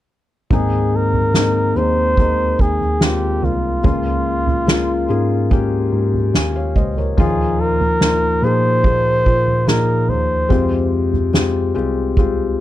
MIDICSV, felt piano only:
0, 0, Header, 1, 2, 480
1, 0, Start_track
1, 0, Key_signature, -4, "major"
1, 0, Tempo, 833333
1, 291, Time_signature, 4, 2, 24, 8
1, 7260, End_track
2, 0, Start_track
2, 0, Title_t, "Felt piano"
2, 0, Program_c, 0, 0
2, 294, Note_on_c, 0, 56, 81
2, 297, Note_on_c, 0, 44, 54
2, 299, Note_on_c, 0, 58, 68
2, 300, Note_on_c, 0, 51, 49
2, 300, Note_on_c, 0, 60, 75
2, 304, Note_on_c, 0, 63, 92
2, 384, Control_c, 0, 64, 127
2, 749, Note_off_c, 0, 56, 0
2, 751, Note_off_c, 0, 58, 0
2, 752, Note_off_c, 0, 60, 0
2, 753, Note_off_c, 0, 63, 0
2, 767, Note_on_c, 0, 56, 61
2, 773, Note_on_c, 0, 58, 60
2, 778, Note_on_c, 0, 60, 51
2, 783, Note_on_c, 0, 63, 70
2, 991, Note_off_c, 0, 44, 0
2, 993, Note_off_c, 0, 51, 0
2, 997, Note_off_c, 0, 56, 0
2, 1000, Note_off_c, 0, 58, 0
2, 1003, Note_off_c, 0, 60, 0
2, 1005, Note_off_c, 0, 63, 0
2, 1013, Note_on_c, 0, 56, 61
2, 1019, Note_on_c, 0, 58, 58
2, 1020, Note_on_c, 0, 60, 54
2, 1024, Note_on_c, 0, 63, 69
2, 1240, Note_off_c, 0, 56, 0
2, 1243, Note_off_c, 0, 58, 0
2, 1244, Note_off_c, 0, 60, 0
2, 1245, Note_off_c, 0, 63, 0
2, 1255, Note_on_c, 0, 56, 59
2, 1256, Note_on_c, 0, 58, 55
2, 1264, Note_on_c, 0, 60, 62
2, 1264, Note_on_c, 0, 63, 71
2, 1709, Note_off_c, 0, 56, 0
2, 1710, Note_off_c, 0, 58, 0
2, 1713, Note_off_c, 0, 60, 0
2, 1714, Note_off_c, 0, 63, 0
2, 1731, Note_on_c, 0, 56, 63
2, 1735, Note_on_c, 0, 58, 50
2, 1740, Note_on_c, 0, 60, 53
2, 1742, Note_on_c, 0, 65, 72
2, 2187, Note_off_c, 0, 56, 0
2, 2189, Note_off_c, 0, 58, 0
2, 2191, Note_off_c, 0, 60, 0
2, 2193, Note_off_c, 0, 65, 0
2, 2209, Note_on_c, 0, 56, 80
2, 2210, Note_on_c, 0, 44, 54
2, 2212, Note_on_c, 0, 58, 75
2, 2213, Note_on_c, 0, 61, 75
2, 2218, Note_on_c, 0, 65, 82
2, 2219, Control_c, 0, 64, 0
2, 2306, Control_c, 0, 64, 127
2, 2666, Note_off_c, 0, 56, 0
2, 2668, Note_off_c, 0, 58, 0
2, 2668, Note_off_c, 0, 61, 0
2, 2670, Note_off_c, 0, 65, 0
2, 2689, Note_on_c, 0, 56, 74
2, 2693, Note_on_c, 0, 58, 73
2, 2697, Note_on_c, 0, 61, 69
2, 2703, Note_on_c, 0, 65, 86
2, 2907, Note_off_c, 0, 44, 0
2, 2918, Note_off_c, 0, 56, 0
2, 2920, Note_off_c, 0, 58, 0
2, 2922, Note_off_c, 0, 61, 0
2, 2925, Note_off_c, 0, 65, 0
2, 2927, Note_on_c, 0, 56, 71
2, 2934, Note_on_c, 0, 58, 72
2, 2938, Note_on_c, 0, 61, 65
2, 2939, Note_on_c, 0, 68, 82
2, 3157, Note_off_c, 0, 56, 0
2, 3161, Note_off_c, 0, 58, 0
2, 3162, Note_off_c, 0, 61, 0
2, 3163, Note_off_c, 0, 68, 0
2, 3171, Note_on_c, 0, 56, 79
2, 3179, Note_on_c, 0, 58, 68
2, 3179, Note_on_c, 0, 61, 69
2, 3183, Note_on_c, 0, 67, 90
2, 3627, Note_off_c, 0, 56, 0
2, 3631, Note_off_c, 0, 58, 0
2, 3631, Note_off_c, 0, 61, 0
2, 3633, Note_off_c, 0, 67, 0
2, 3657, Note_on_c, 0, 80, 52
2, 3664, Note_on_c, 0, 77, 44
2, 3768, Note_off_c, 0, 77, 0
2, 3768, Note_off_c, 0, 80, 0
2, 3776, Note_on_c, 0, 77, 59
2, 3782, Note_on_c, 0, 73, 52
2, 3888, Note_off_c, 0, 77, 0
2, 3891, Note_off_c, 0, 73, 0
2, 3895, Note_on_c, 0, 75, 68
2, 3901, Note_on_c, 0, 72, 54
2, 4007, Note_off_c, 0, 75, 0
2, 4010, Note_off_c, 0, 72, 0
2, 4020, Note_on_c, 0, 73, 54
2, 4023, Note_on_c, 0, 70, 48
2, 4132, Note_on_c, 0, 53, 87
2, 4137, Note_on_c, 0, 58, 82
2, 4138, Control_c, 0, 64, 0
2, 4138, Note_on_c, 0, 46, 58
2, 4142, Note_on_c, 0, 63, 76
2, 4144, Note_on_c, 0, 65, 93
2, 4244, Note_off_c, 0, 73, 0
2, 4246, Note_off_c, 0, 70, 0
2, 4255, Control_c, 0, 64, 127
2, 4587, Note_off_c, 0, 53, 0
2, 4590, Note_off_c, 0, 58, 0
2, 4592, Note_off_c, 0, 63, 0
2, 4593, Note_off_c, 0, 65, 0
2, 4613, Note_on_c, 0, 53, 64
2, 4618, Note_on_c, 0, 58, 59
2, 4619, Note_on_c, 0, 63, 64
2, 4626, Note_on_c, 0, 65, 73
2, 4831, Note_off_c, 0, 46, 0
2, 4840, Note_off_c, 0, 53, 0
2, 4842, Note_off_c, 0, 58, 0
2, 4843, Note_off_c, 0, 63, 0
2, 4846, Note_off_c, 0, 65, 0
2, 4853, Note_on_c, 0, 53, 62
2, 4855, Note_on_c, 0, 58, 52
2, 4859, Note_on_c, 0, 63, 56
2, 4861, Note_on_c, 0, 68, 75
2, 5079, Note_off_c, 0, 53, 0
2, 5081, Note_off_c, 0, 58, 0
2, 5083, Note_off_c, 0, 63, 0
2, 5084, Note_off_c, 0, 68, 0
2, 5088, Note_on_c, 0, 53, 64
2, 5096, Note_on_c, 0, 58, 58
2, 5097, Note_on_c, 0, 63, 59
2, 5100, Note_on_c, 0, 68, 74
2, 5545, Note_off_c, 0, 53, 0
2, 5550, Note_off_c, 0, 58, 0
2, 5550, Note_off_c, 0, 63, 0
2, 5552, Note_off_c, 0, 68, 0
2, 5567, Note_on_c, 0, 53, 60
2, 5569, Note_on_c, 0, 58, 53
2, 5573, Note_on_c, 0, 63, 60
2, 5577, Note_on_c, 0, 68, 69
2, 6025, Note_off_c, 0, 53, 0
2, 6026, Note_off_c, 0, 58, 0
2, 6028, Note_off_c, 0, 63, 0
2, 6030, Note_off_c, 0, 68, 0
2, 6041, Note_on_c, 0, 56, 86
2, 6046, Note_on_c, 0, 48, 57
2, 6047, Note_on_c, 0, 60, 76
2, 6050, Note_on_c, 0, 65, 74
2, 6055, Note_on_c, 0, 67, 91
2, 6057, Control_c, 0, 64, 0
2, 6141, Control_c, 0, 64, 127
2, 6502, Note_off_c, 0, 56, 0
2, 6505, Note_off_c, 0, 60, 0
2, 6507, Note_off_c, 0, 65, 0
2, 6509, Note_off_c, 0, 67, 0
2, 6528, Note_on_c, 0, 56, 74
2, 6530, Note_on_c, 0, 60, 64
2, 6536, Note_on_c, 0, 65, 66
2, 6537, Note_on_c, 0, 67, 77
2, 6745, Note_off_c, 0, 48, 0
2, 6757, Note_off_c, 0, 56, 0
2, 6759, Note_off_c, 0, 60, 0
2, 6761, Note_off_c, 0, 65, 0
2, 6762, Note_off_c, 0, 67, 0
2, 6765, Note_on_c, 0, 56, 77
2, 6768, Note_on_c, 0, 60, 62
2, 6770, Note_on_c, 0, 65, 65
2, 6772, Note_on_c, 0, 67, 82
2, 6996, Note_off_c, 0, 56, 0
2, 6997, Note_off_c, 0, 60, 0
2, 6998, Note_off_c, 0, 65, 0
2, 7000, Note_off_c, 0, 67, 0
2, 7012, Note_on_c, 0, 56, 76
2, 7014, Note_on_c, 0, 60, 69
2, 7020, Note_on_c, 0, 65, 66
2, 7022, Note_on_c, 0, 67, 77
2, 7260, Note_off_c, 0, 56, 0
2, 7260, Note_off_c, 0, 60, 0
2, 7260, Note_off_c, 0, 65, 0
2, 7260, Note_off_c, 0, 67, 0
2, 7260, End_track
0, 0, End_of_file